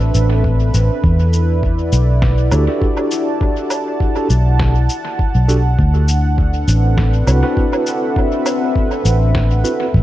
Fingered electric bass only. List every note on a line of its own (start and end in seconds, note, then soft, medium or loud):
0.00 0.12 A1 medium
0.15 0.71 A1 medium
0.74 0.88 A1 medium
1.04 1.90 E2 medium
1.93 2.49 B1 medium
2.52 2.66 D2 medium
4.30 4.87 B1 loud
5.35 5.76 B1 medium
5.79 6.65 D2 loud
6.68 7.25 A1 loud
7.27 7.41 C2 medium
9.05 9.62 A1 loud
9.94 10.03 A1 medium